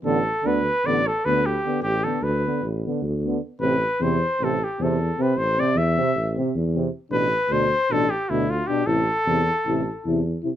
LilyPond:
<<
  \new Staff \with { instrumentName = "Cornet" } { \time 9/8 \key a \minor \tempo 4. = 103 a'4 b'4 d''8 a'8 b'8 g'4 | g'8 a'8 b'4 r2 r8 | b'4 c''4 a'8 g'8 a'4 b'8 | c''8 d''8 e''4. r2 |
b'4 c''4 a'8 g'8 e'8 f'8 g'8 | a'2.~ a'8 r4 | }
  \new Staff \with { instrumentName = "Euphonium" } { \time 9/8 \key a \minor b4 b4 b4 b4 b8~ | b8 b4 b4 b4 b4 | c'4 c'4 c'4 c'4 c'8~ | c'8 c'4 c'4 c'4 c'4 |
d'4 d'4 d'4 d'4 d'8 | e'4 e'4 e'4 e'4 e'8 | }
  \new Staff \with { instrumentName = "Trombone" } { \clef bass \time 9/8 \key a \minor d4 d4 d4 d4 d8~ | d8 d4 d4 d4 d4 | c4 c4 c4 c4 c8~ | c8 c4 c4 c4 c4 |
b,4 b,4 b,4 b,4 b,8 | c4 c4 c4 c4 c8 | }
  \new Staff \with { instrumentName = "Tuba" } { \clef bass \time 9/8 \key a \minor a,,4 d,4 a,,4 d,4. | a,,4 d,4 a,,4 d,4. | a,,4 e,4 a,,4 e,4. | a,,4 e,4 a,,4 e,4. |
a,,4 d,4 a,,4 d,4. | a,,4 e,4 a,,4 e,4. | }
>>